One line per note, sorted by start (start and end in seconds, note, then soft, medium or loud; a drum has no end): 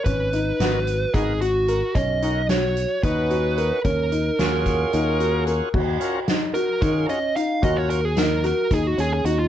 0.04 0.51 G#1 medium
0.04 0.29 C#4 medium
0.04 1.17 B4 medium
0.04 kick medium
0.04 closed hi-hat medium
0.33 0.56 D#4 medium
0.33 closed hi-hat medium
0.60 1.05 G#1 medium
0.60 0.79 B3 medium
0.60 0.79 D#4 medium
0.60 1.07 F#4 medium
0.60 0.80 F#4 medium
0.60 0.80 A#4 medium
0.60 snare loud
0.60 closed hi-hat medium
0.87 closed hi-hat medium
1.14 1.81 G#1 loud
1.14 1.33 B3 medium
1.14 1.37 D#4 medium
1.14 1.33 D#4 medium
1.14 1.33 F#4 medium
1.14 1.39 G#4 medium
1.14 1.34 A#4 medium
1.14 kick medium
1.14 closed hi-hat medium
1.41 1.64 F#4 medium
1.41 1.97 F#4 medium
1.41 closed hi-hat medium
1.68 1.92 A#4 medium
1.68 closed hi-hat medium
1.95 2.85 B1 medium
1.95 2.19 C#4 medium
1.95 2.46 D#5 medium
1.95 kick medium
1.95 closed hi-hat medium
2.22 2.42 C#4 medium
2.22 2.45 D#4 medium
2.22 2.42 D#4 medium
2.22 2.42 F#4 medium
2.22 2.42 A#4 medium
2.22 closed hi-hat medium
2.49 2.96 F#4 medium
2.49 3.03 C#5 medium
2.49 snare loud
2.49 closed hi-hat medium
2.77 closed hi-hat medium
3.03 3.70 D#2 medium
3.03 3.80 C#4 medium
3.03 3.27 D#4 medium
3.03 3.80 D#4 soft
3.03 3.80 F#4 soft
3.03 3.81 B4 medium
3.03 3.80 B4 medium
3.03 kick loud
3.03 closed hi-hat medium
3.30 3.54 F#4 medium
3.30 closed hi-hat soft
3.58 3.81 A#4 medium
3.58 closed hi-hat medium
3.84 4.29 D#2 medium
3.84 4.08 C#4 medium
3.84 5.43 A#4 medium
3.84 kick medium
3.84 closed hi-hat medium
4.12 4.35 D#4 medium
4.12 closed hi-hat medium
4.39 4.84 D#2 medium
4.39 4.92 C#4 medium
4.39 4.92 F4 medium
4.39 4.85 F#4 medium
4.39 4.93 F#4 medium
4.39 4.93 G#4 medium
4.39 snare loud
4.39 closed hi-hat medium
4.66 kick medium
4.66 snare soft
4.66 closed hi-hat medium
4.93 5.60 D#2 medium
4.93 5.68 C#4 medium
4.93 5.16 D#4 medium
4.93 5.69 F4 medium
4.93 5.69 F#4 medium
4.93 5.69 G#4 medium
4.93 closed hi-hat medium
5.20 5.43 F#4 medium
5.20 closed hi-hat medium
5.47 5.70 A#4 medium
5.47 closed hi-hat medium
5.74 5.96 D#2 medium
5.74 6.20 F#4 medium
5.74 kick medium
5.74 crash medium
6.00 6.19 C#4 medium
6.00 6.20 F4 medium
6.00 6.20 F#4 medium
6.00 6.20 A#4 medium
6.00 closed hi-hat medium
6.27 6.51 D#4 medium
6.27 snare loud
6.27 closed hi-hat medium
6.54 6.78 F#4 medium
6.54 7.05 A#4 medium
6.54 closed hi-hat medium
6.81 7.04 D#3 medium
6.81 7.19 C#4 medium
6.81 7.05 D#4 medium
6.81 7.19 F4 medium
6.81 7.19 F#4 soft
6.81 7.20 G#4 medium
6.81 kick medium
6.81 snare soft
6.81 closed hi-hat medium
7.09 7.32 C#4 medium
7.09 7.36 D#5 medium
7.09 closed hi-hat medium
7.36 7.59 D#4 medium
7.36 7.64 F5 medium
7.36 closed hi-hat medium
7.62 8.52 D#2 loud
7.62 8.01 C#4 medium
7.62 8.01 F4 soft
7.62 8.09 F#4 medium
7.62 8.01 F#4 medium
7.62 8.01 A#4 medium
7.62 7.77 D#5 loud
7.62 kick loud
7.62 closed hi-hat medium
7.77 7.90 C#5 medium
7.90 8.02 A#4 medium
7.90 closed hi-hat medium
8.05 8.18 G#4 medium
8.17 8.40 D#4 medium
8.17 8.43 A#4 medium
8.17 snare loud
8.17 closed hi-hat medium
8.44 8.67 F#4 medium
8.44 8.73 A#4 medium
8.44 snare soft
8.44 closed hi-hat medium
8.71 8.93 D#2 medium
8.71 8.94 D#4 medium
8.71 8.87 G#4 medium
8.71 kick medium
8.71 closed hi-hat medium
8.87 9.00 F#4 medium
8.98 9.20 D#2 medium
8.98 9.21 C#4 medium
8.98 9.12 G#4 medium
8.98 closed hi-hat medium
9.13 9.25 G#4 medium
9.24 9.47 D#2 medium
9.24 9.48 D#4 medium
9.24 9.39 F#4 medium
9.24 closed hi-hat medium
9.39 9.44 F4 medium